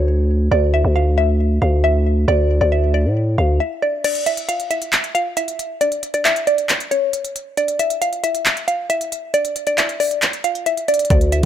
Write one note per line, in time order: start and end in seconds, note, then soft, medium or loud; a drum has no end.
0.00 0.49 D2 loud
0.00 0.48 C#5 medium
0.51 0.83 D2 loud
0.51 0.70 D5 medium
0.74 0.92 E5 medium
0.85 1.59 D2 loud
0.96 1.14 F5 medium
1.18 1.59 E5 medium
1.62 2.25 D2 loud
1.62 1.80 F5 medium
1.84 2.25 E5 loud
2.28 2.60 D2 loud
2.28 2.59 D5 medium
2.61 3.07 D2 loud
2.61 2.70 D5 medium
2.72 2.91 E5 medium
2.94 3.13 D5 medium
3.05 3.37 A2 medium
3.38 3.59 D2 loud
3.38 3.57 F5 medium
3.60 3.79 E5 medium
3.82 4.01 D5 medium
4.04 4.23 D5 medium
4.04 closed hi-hat medium
4.04 crash medium
4.15 closed hi-hat medium
4.26 4.45 E5 medium
4.26 closed hi-hat medium
4.37 closed hi-hat medium
4.49 4.67 F5 medium
4.49 closed hi-hat medium
4.60 closed hi-hat soft
4.71 5.12 E5 medium
4.71 closed hi-hat medium
4.82 closed hi-hat medium
4.93 clap loud
4.93 closed hi-hat medium
5.04 closed hi-hat soft
5.15 5.33 F5 medium
5.15 closed hi-hat medium
5.37 5.78 E5 medium
5.37 closed hi-hat medium
5.48 closed hi-hat medium
5.59 closed hi-hat medium
5.81 6.12 D5 loud
5.81 closed hi-hat medium
5.92 closed hi-hat medium
6.03 closed hi-hat medium
6.14 6.23 D5 medium
6.14 closed hi-hat medium
6.25 6.44 E5 medium
6.25 clap medium
6.25 closed hi-hat medium
6.36 closed hi-hat soft
6.47 6.66 D5 medium
6.47 closed hi-hat medium
6.58 closed hi-hat medium
6.69 clap loud
6.69 closed hi-hat medium
6.80 closed hi-hat medium
6.91 7.53 C#5 medium
6.91 closed hi-hat medium
7.13 closed hi-hat medium
7.25 closed hi-hat medium
7.36 closed hi-hat medium
7.57 7.76 D5 medium
7.57 closed hi-hat medium
7.68 closed hi-hat medium
7.79 7.98 E5 medium
7.79 closed hi-hat medium
7.90 closed hi-hat medium
8.02 8.20 F5 medium
8.02 closed hi-hat medium
8.13 closed hi-hat soft
8.24 8.65 E5 medium
8.24 closed hi-hat medium
8.35 closed hi-hat medium
8.46 clap loud
8.46 closed hi-hat medium
8.57 closed hi-hat medium
8.68 8.86 F5 medium
8.68 closed hi-hat medium
8.90 9.31 E5 loud
8.90 closed hi-hat medium
9.01 closed hi-hat medium
9.12 closed hi-hat medium
9.34 9.65 D5 medium
9.34 closed hi-hat medium
9.45 closed hi-hat medium
9.56 closed hi-hat medium
9.67 9.76 D5 medium
9.67 closed hi-hat medium
9.78 9.97 E5 medium
9.78 clap medium
9.78 closed hi-hat medium
9.89 closed hi-hat soft
10.00 10.19 D5 medium
10.00 open hi-hat medium
10.11 closed hi-hat medium
10.22 clap loud
10.22 closed hi-hat medium
10.33 closed hi-hat medium
10.44 10.63 F5 medium
10.44 closed hi-hat medium
10.55 closed hi-hat soft
10.66 10.85 E5 medium
10.66 closed hi-hat medium
10.77 closed hi-hat medium
10.88 11.07 D5 medium
10.88 closed hi-hat medium
10.94 closed hi-hat medium
10.99 closed hi-hat medium
11.05 closed hi-hat medium
11.10 11.42 D2 loud
11.10 11.29 D5 medium
11.10 kick loud
11.10 closed hi-hat medium
11.21 closed hi-hat medium
11.32 11.45 E5 medium
11.32 closed hi-hat medium